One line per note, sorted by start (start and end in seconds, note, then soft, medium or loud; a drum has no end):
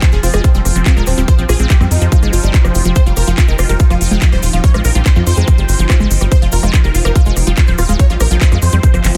0.00 9.17 F3 medium
0.00 0.07 C4 medium
0.00 2.98 F4 medium
0.00 9.17 F4 medium
0.00 9.17 C5 medium
0.00 9.17 G5 medium
0.00 kick loud
0.00 clap loud
0.00 closed hi-hat medium
0.00 cabasa medium
0.12 0.20 F1 medium
0.12 0.20 F3 medium
0.12 0.17 G#4 medium
0.12 cabasa soft
0.23 0.30 F1 loud
0.23 0.28 C4 medium
0.23 0.27 F4 loud
0.23 open hi-hat loud
0.23 cabasa loud
0.33 0.41 F1 medium
0.33 0.41 G#3 loud
0.33 0.38 G#4 loud
0.33 cross-stick medium
0.33 closed hi-hat medium
0.33 cabasa soft
0.44 0.49 C4 medium
0.44 kick loud
0.44 closed hi-hat medium
0.44 cabasa medium
0.55 0.62 F1 medium
0.55 0.59 G3 medium
0.55 0.59 C4 medium
0.55 closed hi-hat soft
0.55 cabasa soft
0.65 0.72 F1 loud
0.65 cross-stick soft
0.65 open hi-hat loud
0.65 cabasa loud
0.76 0.83 F1 medium
0.76 0.83 F3 medium
0.76 0.80 C4 medium
0.76 closed hi-hat medium
0.76 cabasa soft
0.86 0.91 C4 medium
0.86 0.90 F4 loud
0.86 kick loud
0.86 clap loud
0.86 closed hi-hat medium
0.86 cabasa medium
0.97 1.04 D#1 medium
0.97 1.04 G#3 loud
0.97 1.01 A#4 medium
0.97 cabasa soft
1.07 1.14 D#1 loud
1.07 1.12 C4 medium
1.07 cross-stick soft
1.07 open hi-hat loud
1.07 cabasa loud
1.18 1.24 D#1 medium
1.18 1.22 G3 medium
1.18 1.22 C4 medium
1.18 closed hi-hat medium
1.18 cabasa soft
1.28 1.33 C5 medium
1.28 kick loud
1.28 closed hi-hat medium
1.28 cabasa medium
1.38 1.45 A#1 medium
1.38 1.46 F3 medium
1.38 1.43 C4 medium
1.38 closed hi-hat soft
1.38 cabasa soft
1.49 1.56 A#1 loud
1.49 1.53 F4 loud
1.49 1.54 G#4 medium
1.49 cross-stick medium
1.49 open hi-hat loud
1.49 cabasa medium
1.59 1.66 A#1 medium
1.59 1.67 G#3 loud
1.59 1.64 C4 medium
1.59 closed hi-hat medium
1.59 cabasa soft
1.70 1.75 G4 medium
1.70 kick loud
1.70 clap loud
1.70 closed hi-hat medium
1.70 cabasa medium
1.81 1.87 F2 medium
1.81 1.85 G3 medium
1.81 1.85 C4 medium
1.81 cross-stick soft
1.81 cabasa soft
1.91 1.98 F2 loud
1.91 2.88 D#4 loud
1.91 open hi-hat loud
1.91 cabasa medium
2.01 2.08 F2 medium
2.01 2.09 F3 medium
2.01 closed hi-hat soft
2.01 cabasa soft
2.12 2.16 F4 loud
2.12 kick loud
2.12 closed hi-hat medium
2.12 cabasa medium
2.23 2.29 G1 medium
2.23 2.30 G#3 loud
2.23 cross-stick soft
2.23 closed hi-hat soft
2.23 cabasa soft
2.33 2.40 G1 medium
2.33 2.40 F4 medium
2.33 open hi-hat loud
2.33 cabasa medium
2.43 2.50 G1 medium
2.43 2.53 G3 loud
2.43 closed hi-hat medium
2.43 cabasa soft
2.54 kick loud
2.54 clap loud
2.54 closed hi-hat medium
2.54 cabasa medium
2.64 2.71 F1 medium
2.64 2.74 F3 medium
2.64 cross-stick medium
2.64 cabasa soft
2.75 2.82 F1 loud
2.75 2.82 F4 medium
2.75 open hi-hat medium
2.75 cabasa loud
2.85 2.92 F1 medium
2.85 2.92 F3 loud
2.85 closed hi-hat medium
2.85 cabasa soft
2.96 9.17 D#4 medium
2.96 3.00 C5 loud
2.96 kick loud
2.96 closed hi-hat medium
2.96 cabasa medium
3.06 3.13 F1 medium
3.06 3.11 G3 medium
3.06 3.11 F4 medium
3.06 closed hi-hat soft
3.06 cabasa soft
3.17 3.24 F1 loud
3.17 3.21 A#4 loud
3.17 cross-stick soft
3.17 open hi-hat loud
3.17 cabasa medium
3.27 3.34 F1 loud
3.27 3.34 F3 medium
3.27 3.32 F4 medium
3.27 closed hi-hat medium
3.27 cabasa soft
3.38 3.42 F4 medium
3.38 3.42 F4 loud
3.38 kick loud
3.38 clap loud
3.38 closed hi-hat medium
3.38 cabasa medium
3.48 3.55 F1 medium
3.48 3.55 G#3 loud
3.48 3.53 A#4 medium
3.48 cabasa soft
3.59 3.66 F1 loud
3.59 3.63 F4 medium
3.59 cross-stick medium
3.59 open hi-hat medium
3.59 cabasa medium
3.69 3.76 F1 medium
3.69 3.74 G3 medium
3.69 3.74 A#4 loud
3.69 closed hi-hat soft
3.69 cabasa soft
3.79 3.84 F4 medium
3.79 kick loud
3.79 closed hi-hat medium
3.79 cabasa soft
3.90 3.97 F1 medium
3.90 3.97 F3 medium
3.90 3.95 F4 medium
3.90 cross-stick soft
3.90 closed hi-hat soft
3.90 cabasa soft
4.01 4.08 F1 medium
4.01 4.05 F4 loud
4.01 open hi-hat loud
4.01 cabasa medium
4.11 4.18 F1 medium
4.11 4.18 G#3 loud
4.11 4.16 F4 medium
4.11 cabasa soft
4.22 4.26 F4 medium
4.22 kick loud
4.22 clap loud
4.22 closed hi-hat medium
4.22 cabasa medium
4.32 4.39 D#1 medium
4.32 4.37 G3 medium
4.32 4.37 C5 medium
4.32 cross-stick soft
4.32 cabasa soft
4.43 4.50 D#1 loud
4.43 4.47 F4 medium
4.43 open hi-hat medium
4.43 cabasa medium
4.53 4.60 D#1 medium
4.53 4.60 F3 medium
4.53 4.58 F4 medium
4.53 closed hi-hat medium
4.53 cabasa soft
4.64 4.68 F4 loud
4.64 4.68 C#5 medium
4.64 kick loud
4.64 closed hi-hat medium
4.64 cabasa soft
4.74 4.81 A#1 medium
4.74 4.81 G#3 loud
4.74 4.79 F4 medium
4.74 cross-stick medium
4.74 closed hi-hat soft
4.74 cabasa soft
4.84 4.92 A#1 loud
4.84 4.89 A#4 loud
4.84 open hi-hat loud
4.84 cabasa medium
4.95 5.02 A#1 loud
4.95 4.99 G3 medium
4.95 5.00 F4 medium
4.95 closed hi-hat medium
4.95 cabasa soft
5.06 5.10 C5 medium
5.06 kick loud
5.06 cross-stick soft
5.06 clap loud
5.06 closed hi-hat medium
5.06 cabasa soft
5.16 5.23 F2 medium
5.16 5.23 F3 medium
5.16 5.21 F4 medium
5.16 cabasa soft
5.27 5.34 F2 loud
5.27 5.31 F4 loud
5.27 6.23 C5 loud
5.27 open hi-hat medium
5.27 cabasa loud
5.37 5.44 F2 medium
5.37 5.44 G#3 loud
5.37 closed hi-hat medium
5.37 cabasa soft
5.48 kick loud
5.48 cross-stick soft
5.48 closed hi-hat medium
5.48 cabasa medium
5.58 5.65 G1 medium
5.58 5.62 G3 medium
5.58 closed hi-hat soft
5.58 cabasa soft
5.69 5.76 G1 loud
5.69 open hi-hat loud
5.69 cabasa medium
5.79 5.86 G1 loud
5.79 5.86 F3 medium
5.79 closed hi-hat medium
5.79 cabasa soft
5.90 5.94 F4 loud
5.90 kick loud
5.90 cross-stick medium
5.90 clap loud
5.90 closed hi-hat medium
5.90 cabasa medium
6.00 6.07 G1 medium
6.00 6.07 G#3 loud
6.00 cabasa soft
6.11 6.18 G1 loud
6.11 open hi-hat loud
6.11 cabasa medium
6.21 6.28 G1 medium
6.21 6.25 G3 medium
6.21 cross-stick soft
6.21 closed hi-hat medium
6.21 cabasa soft
6.32 6.36 C5 loud
6.32 kick loud
6.32 closed hi-hat medium
6.32 cabasa medium
6.42 6.49 F1 medium
6.42 6.49 F3 medium
6.42 6.47 F4 medium
6.42 closed hi-hat soft
6.42 cabasa soft
6.52 6.59 F1 loud
6.52 6.57 F4 loud
6.52 6.57 A#4 loud
6.52 open hi-hat loud
6.52 cabasa loud
6.63 6.70 F1 loud
6.63 6.70 G#3 loud
6.63 6.68 F4 medium
6.63 cross-stick soft
6.63 closed hi-hat medium
6.63 cabasa soft
6.74 6.78 F4 medium
6.74 kick loud
6.74 clap loud
6.74 closed hi-hat medium
6.74 cabasa medium
6.84 6.91 F1 medium
6.84 6.88 G3 medium
6.84 6.89 A#4 medium
6.84 cabasa soft
6.95 7.01 F1 loud
6.95 6.99 F4 medium
6.95 open hi-hat medium
6.95 cabasa loud
7.05 7.12 F1 loud
7.05 7.12 F3 medium
7.05 7.10 A#4 loud
7.05 cross-stick medium
7.05 closed hi-hat medium
7.05 cabasa soft
7.16 7.20 F4 medium
7.16 7.20 F4 loud
7.16 kick loud
7.16 closed hi-hat medium
7.16 cabasa medium
7.25 7.33 F1 medium
7.25 7.33 G#3 loud
7.25 7.31 F4 medium
7.25 closed hi-hat soft
7.25 cabasa soft
7.36 7.43 F1 loud
7.36 cross-stick soft
7.36 open hi-hat loud
7.36 cabasa medium
7.47 7.54 F1 loud
7.47 7.51 G3 medium
7.47 7.52 F4 medium
7.47 closed hi-hat medium
7.47 cabasa soft
7.57 7.62 F4 medium
7.57 kick loud
7.57 clap loud
7.57 closed hi-hat medium
7.57 cabasa medium
7.67 7.75 D#1 medium
7.67 7.75 F3 medium
7.67 7.72 C5 medium
7.67 cabasa soft
7.78 7.85 D#1 loud
7.78 7.83 F4 loud
7.78 7.83 F4 medium
7.78 cross-stick soft
7.78 open hi-hat medium
7.78 cabasa medium
7.89 7.96 D#1 medium
7.89 7.96 G#3 loud
7.89 7.93 F4 medium
7.89 closed hi-hat medium
7.89 cabasa soft
7.99 8.04 C#5 medium
7.99 kick loud
7.99 closed hi-hat medium
7.99 cabasa soft
8.10 8.17 A#1 medium
8.10 8.14 G3 medium
8.10 8.14 F4 medium
8.10 closed hi-hat soft
8.10 cabasa soft
8.20 8.27 A#1 loud
8.20 8.25 A#4 medium
8.20 cross-stick medium
8.20 open hi-hat loud
8.20 cabasa medium
8.31 8.38 A#1 loud
8.31 8.38 F3 medium
8.31 8.35 F4 medium
8.31 closed hi-hat medium
8.31 cabasa soft
8.41 8.46 F4 loud
8.41 8.46 C5 medium
8.41 kick loud
8.41 clap loud
8.41 closed hi-hat medium
8.41 cabasa soft
8.52 8.59 F2 medium
8.52 8.59 G#3 loud
8.52 8.56 F4 medium
8.52 cross-stick soft
8.52 closed hi-hat soft
8.52 cabasa soft
8.62 8.69 F2 loud
8.62 9.17 C5 loud
8.62 open hi-hat medium
8.62 cabasa medium
8.72 8.80 F2 medium
8.72 8.77 G3 medium
8.72 closed hi-hat medium
8.72 cabasa soft
8.83 kick loud
8.83 closed hi-hat medium
8.83 cabasa medium
8.94 9.01 G1 medium
8.94 9.01 F3 medium
8.94 cross-stick soft
8.94 closed hi-hat soft
8.94 cabasa soft
9.04 9.11 G1 loud
9.04 9.09 F3 medium
9.04 clap medium
9.04 open hi-hat loud
9.04 cabasa medium